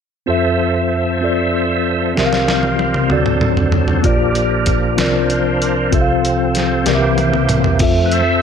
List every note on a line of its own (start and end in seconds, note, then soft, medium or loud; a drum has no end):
0.26 2.12 F2 soft
0.26 2.14 F3 soft
0.26 1.03 C4 medium
0.26 1.03 F4 medium
0.26 2.14 A4 soft
0.26 1.04 A4 medium
0.26 4.00 C5 soft
0.26 2.14 E5 soft
0.26 1.05 E5 medium
1.21 1.97 C4 medium
1.21 1.98 F4 soft
1.21 1.99 A4 soft
1.21 1.99 D5 medium
2.15 3.07 C2 soft
2.15 3.07 C3 soft
2.15 3.10 G3 soft
2.15 2.91 C4 medium
2.15 3.10 F4 soft
2.15 2.92 G4 medium
2.15 3.10 A#4 soft
2.15 2.93 A#4 medium
2.15 snare soft
2.19 2.25 E5 medium
2.26 2.97 F5 medium
2.33 snare soft
2.48 snare soft
2.63 high tom soft
2.79 high tom soft
2.94 mid tom soft
3.08 4.01 D2 medium
3.08 4.01 D3 medium
3.08 4.04 F#3 soft
3.08 3.85 C4 medium
3.08 4.04 D4 soft
3.08 3.86 F#4 medium
3.08 3.86 A4 medium
3.08 4.04 A4 soft
3.08 mid tom medium
3.13 3.87 D5 medium
3.26 mid tom soft
3.41 mid tom medium
3.57 floor tom medium
3.72 floor tom medium
3.88 floor tom medium
4.02 4.95 A#1 medium
4.02 4.94 A#2 medium
4.02 4.98 A#2 soft
4.02 4.97 F3 soft
4.02 4.79 A#3 medium
4.02 5.91 D4 soft
4.02 4.79 F4 medium
4.02 4.80 G4 medium
4.02 4.98 G4 soft
4.02 5.91 A#4 medium
4.02 4.81 D5 medium
4.02 kick medium
4.02 closed hi-hat medium
4.35 closed hi-hat soft
4.66 kick medium
4.66 closed hi-hat medium
4.96 5.89 C2 medium
4.96 5.89 C3 medium
4.96 6.85 F3 medium
4.96 5.73 C4 medium
4.96 5.74 F4 medium
4.96 5.75 A#4 medium
4.96 6.84 C5 medium
4.96 snare medium
4.96 closed hi-hat medium
5.01 5.75 D5 medium
5.30 closed hi-hat soft
5.62 closed hi-hat soft
5.91 6.83 C2 medium
5.91 6.83 C3 medium
5.91 6.86 C3 soft
5.91 6.68 C4 medium
5.91 6.87 C4 soft
5.91 6.68 F4 medium
5.91 6.69 A4 medium
5.91 6.87 A4 soft
5.91 6.00 E5 medium
5.91 kick medium
5.91 closed hi-hat medium
6.01 6.73 F5 medium
6.25 closed hi-hat soft
6.55 snare soft
6.55 closed hi-hat medium
6.84 7.77 C2 medium
6.84 7.77 C3 medium
6.84 7.80 E3 medium
6.84 7.80 A#3 soft
6.84 7.61 C4 medium
6.84 7.62 G4 medium
6.84 7.80 G4 soft
6.84 7.62 A#4 medium
6.84 7.80 C5 medium
6.84 snare soft
6.84 closed hi-hat medium
6.88 6.94 D5 medium
6.95 7.66 E5 medium
7.18 closed hi-hat soft
7.18 high tom soft
7.34 mid tom medium
7.49 closed hi-hat medium
7.49 mid tom medium
7.64 floor tom medium
7.79 8.22 F2 soft
7.79 8.42 F2 medium
7.79 8.23 F3 soft
7.79 8.23 A3 soft
7.79 8.42 C4 medium
7.79 8.42 F4 medium
7.79 8.42 A4 medium
7.79 8.42 E5 medium
7.79 kick medium
7.79 closed hi-hat medium
7.79 crash medium
8.06 8.13 B4 medium
8.12 8.42 A4 medium
8.12 8.42 C5 medium
8.12 8.42 E5 medium
8.12 closed hi-hat soft